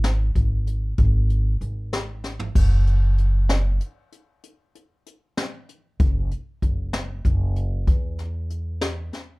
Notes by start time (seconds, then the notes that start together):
Already playing: G#1
0.04 snare, closed hi-hat
0.35 G#1, kick, closed hi-hat
0.67 closed hi-hat
0.98 G#1, kick, closed hi-hat
1.30 closed hi-hat
1.61 G#1, closed hi-hat
1.93 snare, closed hi-hat
2.24 snare
2.39 floor tom
2.55 F#1, kick, crash
2.87 closed hi-hat
3.18 closed hi-hat
3.49 snare, closed hi-hat
3.81 closed hi-hat
4.12 closed hi-hat
4.43 closed hi-hat
4.75 closed hi-hat
5.06 closed hi-hat
5.37 snare, closed hi-hat
5.69 closed hi-hat
6.00 F#1, kick, closed hi-hat
6.31 closed hi-hat
6.62 F#1, kick, closed hi-hat
6.93 snare, closed hi-hat
7.25 F#1, kick, closed hi-hat
7.56 closed hi-hat
7.87 E2, kick, closed hi-hat
8.19 snare, closed hi-hat
8.50 closed hi-hat
8.81 snare, closed hi-hat
9.13 snare, closed hi-hat